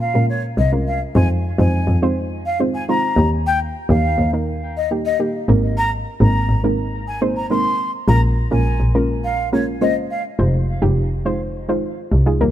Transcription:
0.00 F5
0.14 A#2 G#3 C#4 F4 A#4
0.29 C#5
0.58 C2 D#5
0.72 G#3 C#4 F4 A#4
0.87 F5
1.15 F2 G#3 C4 D#4 F4 C5 G#5
1.59 F2 G#3 C4 D#4 F4 C5 G#5
1.88 F2
2.02 G#3 C4 D#4 F4 C5
2.46 F5
2.60 G#3 C4 D#4 F4 C5
2.74 G#5
2.89 G#3 C4 D#4 F4 C5 A#5
3.17 D#2 A#3 D#4 G4
3.46 G5
3.90 D#2 A#3 D#4 G4 F5
4.19 D#2
4.33 A#3 D#4 A#4
4.77 D#5
4.91 A#3 D#4 G4
5.05 D#5
5.19 A#3 D#4 G4
5.48 G#1 G#3 A#3 C4 D#4 A#4
5.77 A#5
6.20 G#1 G#3 A#3 C4 D#4 A#4 A#5
6.50 G#1
6.63 G#3 A#3 C4 D#4 A#4
7.08 G#5
7.21 G#3 A#3 C4 D#4 C5
7.36 A#5
7.50 G#3 A#3 C4 D#4 A#4 C6
8.08 A#1 G#3 A#3 C#4 F4 A#4 A#5
8.51 A#1 G#3 A#3 C#4 F4 A#4 G#5
8.80 A#1
8.94 G#3 A#3 C#4 F4 A#4
9.24 F5
9.52 G#3 A#3 C#4 F4 A#4 C#5
9.81 G#3 A#3 C#4 F4 C5 D#5
10.10 F5
10.39 F1 G#3 D#4 F4 C5
10.82 F1 G#3 D#4 F4 G4
11.25 G#3 D#4 F4 C5
11.68 G#3 D#4 F4 C5
12.12 C2
12.26 G#3 D#4 F4 G#4
12.40 D#2 G3 A#3 D#4 A#4

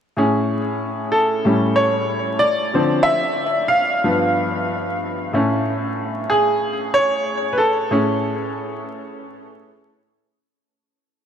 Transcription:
0.17 A2 C#4 G#4
1.12 A4
1.45 A2 G3 C#4
1.76 C#5
2.39 D5
2.74 D3 F3 C4
3.03 E5
3.68 F5
4.04 G2 F3 B3
5.33 A2 A3 C#4
6.30 G#4
6.94 C#5
7.53 B4
7.58 A4
7.91 A2 C#4 G#4

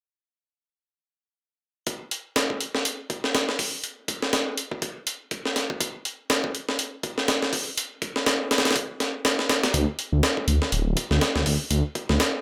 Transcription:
1.87 kick, closed hi-hat
2.11 closed hi-hat
2.36 snare, closed hi-hat
2.50 kick
2.61 closed hi-hat
2.75 snare
2.85 closed hi-hat
3.10 kick, closed hi-hat
3.24 snare
3.35 snare, closed hi-hat
3.49 snare
3.59 kick, open hi-hat
3.84 closed hi-hat
4.08 kick, closed hi-hat
4.22 snare
4.33 snare, closed hi-hat
4.58 closed hi-hat
4.72 kick
4.82 kick, closed hi-hat
5.07 closed hi-hat
5.31 kick, closed hi-hat
5.46 snare
5.56 snare, closed hi-hat
5.70 kick
5.80 kick, closed hi-hat
6.05 closed hi-hat
6.30 snare, closed hi-hat
6.44 kick
6.55 closed hi-hat
6.69 snare
6.79 closed hi-hat
7.03 kick, closed hi-hat
7.18 snare
7.28 snare, closed hi-hat
7.42 snare
7.53 kick, open hi-hat
7.78 closed hi-hat
8.02 kick, closed hi-hat
8.16 snare
8.26 snare, closed hi-hat
8.51 snare, closed hi-hat
8.58 snare, closed hi-hat
8.65 snare, closed hi-hat
8.71 snare, closed hi-hat
8.76 kick, closed hi-hat
9.00 snare, closed hi-hat
9.25 snare, closed hi-hat
9.39 snare
9.49 snare, closed hi-hat
9.63 snare, closed hi-hat
9.74 D2, kick, closed hi-hat
9.99 closed hi-hat
10.13 D2
10.23 snare, closed hi-hat
10.37 kick
10.48 D2, closed hi-hat
10.62 snare
10.72 D1, closed hi-hat
10.86 D1
10.97 kick, closed hi-hat
11.11 D2, snare
11.21 snare, closed hi-hat
11.36 D2, snare
11.46 D2, kick, open hi-hat
11.71 D2, closed hi-hat
11.95 kick, closed hi-hat
12.09 D2, snare
12.20 snare, closed hi-hat

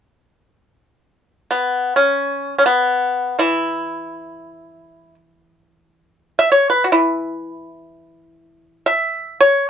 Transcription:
1.51 B3
1.96 C#4
2.58 C#4
2.66 B3
3.39 E3 E4
6.39 E5
6.52 C#5
6.70 B4
6.84 F#4
6.92 E3 E4
8.86 E5
9.40 C#5

